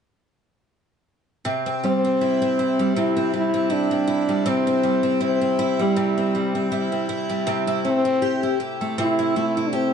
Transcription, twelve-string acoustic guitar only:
1.45 2.95 C3 medium
1.66 2.04 C4 medium
1.83 2.79 G3 soft
2.05 2.41 C4 medium
2.21 2.59 E4 medium
2.42 3.16 C4 medium
2.59 3.69 E4 medium
2.79 3.33 G3 medium
2.96 4.44 C3 medium
3.17 3.53 C4 medium
3.33 4.28 G3 soft
3.54 3.91 C4 soft
3.70 4.07 E4 medium
3.91 4.67 C4 soft
4.08 5.20 E4 medium
4.29 4.83 G3 soft
4.46 5.95 C3 medium
4.67 5.03 C4 medium
4.83 5.79 G3 medium
5.03 5.41 C4 medium
5.21 5.58 E4 medium
5.42 6.17 C4 medium
5.59 6.71 E4 medium
5.79 6.34 G3 medium
5.96 7.45 C3 medium
6.18 6.55 C4 soft
6.35 7.29 G3 soft
6.55 6.92 C4 soft
6.72 7.09 E4 medium
6.92 7.67 C4 medium
7.09 7.67 E4 medium
7.29 7.84 G3 medium
7.47 8.97 C3 medium
7.67 8.04 E4 medium
7.85 8.80 A3 medium
8.05 8.42 E4 medium
8.22 8.60 G4 medium
8.43 9.18 E4 medium
8.60 9.72 G4 medium
8.81 9.35 A3 medium
8.98 9.93 C3 medium
9.19 9.56 E4 medium
9.36 9.93 A3 medium
9.57 9.93 E4 medium
9.73 9.93 G4 medium

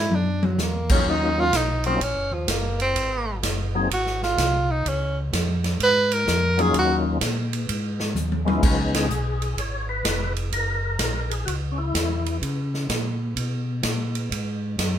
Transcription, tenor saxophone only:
0.00 0.16 E4 medium
0.15 0.47 D4 medium
0.45 0.63 F#3 medium
0.62 0.91 A#3 medium
0.91 1.12 C#4 medium
1.10 1.41 D#4 medium
1.40 1.58 F4 loud
1.56 1.86 D#4 medium
1.86 2.05 C4 medium
2.03 2.35 C#4 medium
2.33 2.53 F3 medium
2.51 2.81 A#3 medium
2.82 3.40 C4 medium
3.93 4.21 F#4 medium
4.24 4.72 F4 medium
4.71 4.90 D#4 medium
4.89 5.18 C#4 medium
5.83 6.15 B4 loud
6.14 6.63 A#4 loud
6.61 6.75 G#4 medium
6.79 6.96 F#4 medium

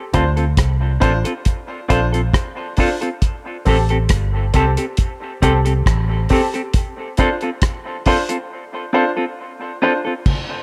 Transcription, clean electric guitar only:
0.14 0.24 C4 medium
0.14 0.24 F4 medium
0.14 0.24 A4 medium
0.37 0.45 C4 soft
0.37 0.44 F4 soft
0.37 0.44 A4 medium
1.01 1.11 C4 medium
1.01 1.12 F4 medium
1.01 1.12 A4 medium
1.25 1.33 C4 soft
1.25 1.32 F4 soft
1.25 1.32 A4 medium
1.89 1.99 C4 medium
1.89 2.00 F4 medium
1.89 2.00 A4 loud
2.13 2.21 C4 soft
2.13 2.21 F4 medium
2.13 2.20 A4 medium
2.79 2.88 C4 medium
2.79 2.89 F4 medium
2.79 2.89 A4 medium
3.01 3.09 C4 soft
3.01 3.09 F4 soft
3.01 3.08 A4 medium
3.67 3.77 C4 medium
3.67 3.77 G4 medium
3.67 3.77 A4 medium
3.90 3.98 C4 soft
3.90 3.97 G4 medium
3.90 3.97 A4 medium
4.55 4.64 C4 medium
4.55 4.65 G4 medium
4.55 4.65 A4 medium
4.77 4.85 C4 soft
4.77 4.85 G4 medium
4.77 4.84 A4 medium
5.42 5.52 C4 medium
5.42 5.52 G4 medium
5.42 5.53 A4 medium
5.65 5.73 C4 soft
5.65 5.73 G4 soft
5.65 5.72 A4 medium
6.31 6.40 C4 medium
6.31 6.41 G4 medium
6.31 6.41 A4 medium
6.54 6.61 C4 soft
6.54 6.61 G4 medium
6.54 6.61 A4 medium
7.19 7.28 C4 medium
7.19 7.29 F4 medium
7.19 7.29 A4 loud
7.42 7.49 C4 soft
7.42 7.49 F4 soft
7.42 7.49 A4 medium
8.06 8.16 C4 medium
8.06 8.16 F4 medium
8.06 8.17 A4 medium
8.29 8.37 C4 soft
8.29 8.36 F4 soft
8.29 8.36 A4 medium
8.93 9.04 C4 medium
8.93 9.04 F4 medium
8.93 9.04 A4 medium
9.17 9.25 C4 soft
9.17 9.24 F4 soft
9.17 9.24 A4 medium
9.82 9.92 C4 medium
9.82 9.92 F4 medium
9.82 9.93 A4 medium
10.05 10.13 C4 soft
10.05 10.13 F4 soft
10.05 10.12 A4 medium

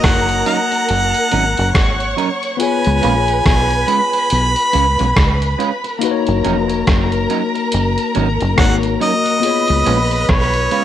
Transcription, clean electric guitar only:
0.46 0.57 F#3 medium
0.46 0.57 C#4 loud
0.46 0.57 D#4 medium
0.46 0.58 A#4 medium
0.71 muted clean electric guitar stroke medium
1.31 1.42 F#3 medium
1.31 1.43 C#4 medium
1.31 1.43 D#4 loud
1.31 1.43 A#4 loud
1.57 muted clean electric guitar stroke soft
2.16 2.28 F#3 medium
2.16 2.28 C#4 loud
2.16 2.28 D#4 medium
2.16 2.28 A#4 loud
3.02 3.13 G#3 medium
3.02 3.13 C#4 medium
3.02 3.14 F4 loud
3.02 3.14 B4 loud
3.87 3.99 G#3 medium
3.87 3.99 C#4 medium
3.87 3.99 F4 medium
3.87 3.99 B4 medium
4.13 muted clean electric guitar stroke soft
4.73 4.84 G#3 medium
4.73 4.84 C#4 medium
4.73 4.85 F4 medium
4.73 4.85 B4 medium
4.98 5.05 G#3 medium
4.98 5.05 C#4 medium
4.98 5.05 F4 medium
4.98 5.04 B4 medium
5.58 5.70 G#3 medium
5.58 5.70 C#4 medium
5.58 5.70 F4 medium
5.58 5.70 B4 loud
5.84 muted clean electric guitar stroke medium
6.44 6.55 F#3 medium
6.44 6.55 C#4 medium
6.44 6.56 D#4 loud
6.44 6.56 A#4 loud
7.29 7.41 F#3 medium
7.29 7.41 C#4 medium
7.29 7.41 D#4 medium
7.29 7.41 A#4 medium
7.55 muted clean electric guitar stroke soft
8.15 8.26 F#3 medium
8.15 8.26 C#4 loud
8.15 8.26 D#4 medium
8.15 8.27 A#4 medium
8.40 muted clean electric guitar stroke soft
9.00 9.11 F#3 medium
9.00 9.12 C#4 medium
9.00 9.12 D#4 loud
9.00 9.12 A#4 medium
9.85 9.97 G#3 medium
9.85 9.97 C#4 medium
9.85 9.97 F4 medium
9.85 9.97 B4 loud
10.71 10.82 G#3 medium
10.71 10.82 C#4 medium
10.71 10.83 F4 medium
10.71 10.83 B4 loud

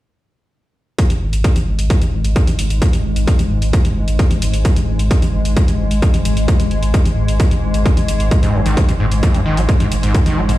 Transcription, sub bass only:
1.10 1.21 G#1 medium
1.21 1.32 G#1 medium
1.33 1.44 G#1 medium
1.56 1.66 G#1 medium
1.67 1.78 G#1 loud
1.79 1.90 G#1 medium
2.02 2.12 G#1 medium
2.13 2.24 G#1 loud
2.24 2.36 G#1 medium
2.47 2.58 G#1 medium
2.59 2.70 G#1 loud
2.70 2.81 G#1 medium
2.93 3.04 G#1 medium
3.05 3.16 G#1 medium
3.16 3.27 G#1 medium
3.39 3.50 G#1 medium
3.50 3.61 G#1 loud
3.62 3.73 G#1 medium
3.85 3.96 G#1 medium
3.96 4.07 G#1 loud
4.08 4.19 G#1 medium
4.31 4.41 G#1 medium
4.42 4.53 G#1 loud
4.53 4.65 G#1 medium
4.76 4.87 G#1 medium
4.88 4.99 G#1 loud
4.99 5.10 G#1 medium
5.22 5.33 G#1 medium
5.33 5.44 G#1 loud
5.45 5.56 G#1 medium
5.68 5.79 G#1 medium
5.79 5.90 G#1 loud
5.91 6.02 G#1 medium
6.14 6.24 G#1 medium
6.25 6.36 G#1 loud
6.37 6.48 G#1 medium
6.60 6.70 G#1 medium
6.71 6.82 G#1 loud
6.82 6.94 G#1 medium
7.05 7.16 G#1 medium
7.17 7.28 G#1 loud
7.28 7.39 G#1 medium
7.51 7.62 G#1 medium
7.63 7.74 G#1 loud
7.74 7.85 G#1 medium
7.97 8.08 G#1 medium
8.08 8.19 G#1 loud
8.20 8.31 G#1 medium
8.43 8.54 G#1 medium
8.54 8.65 G#1 loud
8.66 8.77 G#1 medium
8.89 8.99 G#1 medium
9.00 9.11 G#1 loud
9.12 9.23 G#1 medium
9.34 9.45 G#1 medium
9.46 9.57 G#1 loud
9.57 9.68 G#1 medium
9.80 9.91 G#1 medium
9.92 10.03 G#1 loud
10.03 10.14 G#1 medium
10.26 10.37 G#1 medium
10.37 10.48 G#1 loud
10.49 10.58 G#1 medium

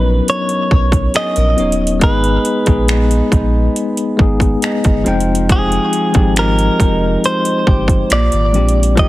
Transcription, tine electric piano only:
0.00 1.56 F#3 medium
0.00 1.57 B3 medium
0.00 1.58 C#4 medium
0.00 2.04 D4 medium
0.00 1.59 D#4 medium
0.00 2.04 A#4 loud
0.00 0.37 B4 medium
1.56 1.86 F#3 medium
1.56 1.87 B3 medium
1.56 1.88 C#4 medium
1.56 1.88 D#4 medium
1.56 1.88 C#5 medium
2.00 2.45 G#3 medium
2.00 2.46 B3 medium
2.00 2.46 D#4 medium
2.04 2.47 G#4 loud
2.65 3.69 G#3 medium
2.65 3.70 B3 medium
2.65 3.70 D#4 medium
2.69 3.71 G#4 medium
4.17 4.77 G#3 medium
4.17 4.78 B3 medium
4.17 4.78 D#4 medium
4.21 4.79 G#4 medium
5.04 5.92 F3 medium
5.04 5.92 G#3 medium
5.04 5.93 C4 medium
5.04 5.93 D#4 medium
5.08 5.94 G5 medium
6.12 7.31 F3 medium
6.12 7.32 G#3 medium
6.12 7.32 C4 medium
6.12 7.33 D#4 medium
6.16 7.33 G4 medium
8.52 8.82 F3 medium
8.52 8.83 G#3 medium
8.52 8.83 C4 medium
8.52 8.84 D4 medium
8.56 8.84 G4 medium
8.95 9.09 F3 medium
8.95 9.09 A#3 medium
8.95 9.09 D#4 medium
9.00 9.09 G4 medium

